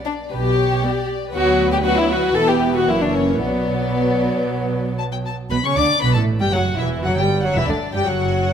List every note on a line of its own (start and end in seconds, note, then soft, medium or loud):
0.00 0.31 D5 soft
0.05 0.13 D4 medium
0.32 0.74 B1 medium
0.32 0.75 B2 medium
0.32 1.07 G4 medium
0.32 0.58 B4 soft
0.59 0.83 C#5 medium
0.83 0.91 G3 soft
0.83 0.91 B3 soft
0.83 1.34 D5 medium
1.33 2.31 D2 medium
1.33 1.80 F#3 medium
1.33 1.80 B3 medium
1.33 1.69 F#4 medium
1.33 2.84 B4 medium
1.72 1.77 G4 medium
1.84 2.34 F#3 medium
1.84 2.34 B3 medium
1.84 1.97 F#4 medium
1.97 2.09 E4 medium
2.10 2.35 F#4 medium
2.35 2.86 E1 medium
2.35 2.86 E2 medium
2.35 2.86 E3 medium
2.35 2.86 B3 medium
2.35 2.48 A4 medium
2.48 2.73 G4 medium
2.74 2.87 F#4 medium
2.87 3.39 F#1 medium
2.87 3.40 F#2 soft
2.87 3.39 E3 soft
2.87 3.40 A#3 medium
2.87 3.00 E4 medium
2.87 3.38 C#5 medium
3.01 3.13 D4 medium
3.13 3.40 C#4 medium
3.39 5.30 B1 soft
3.39 5.31 B2 medium
3.39 5.31 F#3 soft
3.39 5.31 B3 soft
3.39 4.95 B3 medium
3.39 4.98 D5 medium
4.99 5.04 A5 medium
5.12 5.17 G5 soft
5.27 5.35 A5 soft
5.50 5.56 B1 medium
5.50 5.56 B2 medium
5.50 5.63 B3 medium
5.50 5.56 B4 medium
5.50 5.63 B5 medium
5.64 5.76 C#3 medium
5.64 5.77 C#4 medium
5.64 5.76 C#5 medium
5.64 5.77 C#6 medium
5.75 5.85 D2 medium
5.75 5.85 D3 medium
5.75 6.02 D4 medium
5.75 6.02 D5 medium
5.75 6.01 D6 medium
6.01 6.15 B1 medium
6.01 6.15 B2 medium
6.01 6.14 B3 medium
6.01 6.15 B4 medium
6.01 6.14 B5 medium
6.14 6.41 A1 medium
6.14 6.40 A2 medium
6.14 6.22 A3 medium
6.14 6.23 A4 medium
6.14 6.22 A5 medium
6.40 6.53 G2 medium
6.40 6.45 G3 medium
6.40 6.53 G4 medium
6.40 6.53 G5 medium
6.53 6.79 F#1 medium
6.53 6.79 F#2 medium
6.53 6.61 F#3 medium
6.53 6.79 F#4 medium
6.53 6.79 F#5 medium
6.78 7.04 E1 medium
6.78 7.04 E2 medium
6.78 7.04 E3 medium
6.78 7.04 E4 medium
6.78 6.88 E5 medium
7.04 7.17 F#1 medium
7.04 7.17 F#2 medium
7.04 7.17 F#3 medium
7.04 7.17 F#4 medium
7.04 7.17 F#5 medium
7.17 7.42 G1 medium
7.17 7.42 G2 medium
7.17 7.43 G3 medium
7.17 7.25 G4 medium
7.17 7.42 G5 medium
7.42 7.48 F#2 medium
7.42 7.55 F#3 medium
7.42 7.55 F#4 medium
7.42 7.55 F#5 medium
7.55 7.61 E1 medium
7.55 7.61 E2 medium
7.55 7.68 E3 medium
7.55 7.68 E4 medium
7.55 7.68 E5 medium
7.68 7.76 D2 medium
7.68 7.76 D3 medium
7.68 7.94 D4 medium
7.68 7.93 D5 medium
7.94 7.99 G2 medium
7.94 8.06 G3 medium
7.94 8.06 G4 medium
7.94 8.06 G5 medium
8.06 8.53 F#1 medium
8.06 8.53 F#2 medium
8.06 8.53 F#3 medium
8.06 8.53 F#4 medium
8.06 8.53 F#5 medium